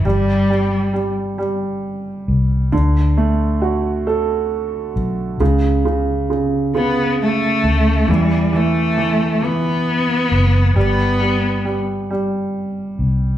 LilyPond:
<<
  \new Staff \with { instrumentName = "Cello" } { \time 6/8 \key g \major \tempo 4. = 45 g4 r2 | r2. | r4. b8 a4 | g8 a4 b4. |
b4 r2 | }
  \new Staff \with { instrumentName = "Upright piano" } { \clef bass \time 6/8 \key g \major g8 g8 g8 g4. | d8 a8 fis'8 a'4. | cis8 cis8 cis8 cis4. | e8 e8 e8 e4. |
g8 g8 g8 g4. | }
  \new Staff \with { instrumentName = "Fingered electric bass" } { \clef bass \time 6/8 \key g \major g,,2~ g,,8 c,8 | d,2~ d,8 b,,8 | cis,2~ cis,8 d,8 | e,2~ e,8 fis,,8 |
g,,2~ g,,8 c,8 | }
>>